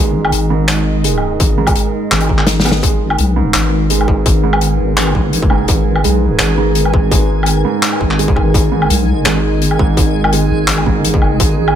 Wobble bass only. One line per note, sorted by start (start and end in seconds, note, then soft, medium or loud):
0.00 0.31 G#1 loud
0.33 1.39 G#1 loud
1.40 1.74 G#1 loud
2.12 2.82 G#1 loud
2.83 3.17 G#1 medium
3.19 3.53 B1 loud
3.54 4.07 G#1 loud
4.08 4.78 G#1 loud
4.79 5.14 G#1 medium
5.15 5.49 G#1 loud
5.50 5.67 F#1 loud
5.69 6.03 G#1 loud
6.04 6.39 B1 loud
6.40 6.92 G#1 loud
6.93 7.64 G#1 loud
8.01 8.53 G#1 loud
8.54 8.89 G#1 medium
8.90 9.24 B1 loud
9.26 9.78 G#1 loud
9.79 10.49 G#1 loud
10.51 10.85 G#1 loud
10.86 11.21 G#1 loud
11.22 11.39 F#1 loud
11.40 11.74 G#1 loud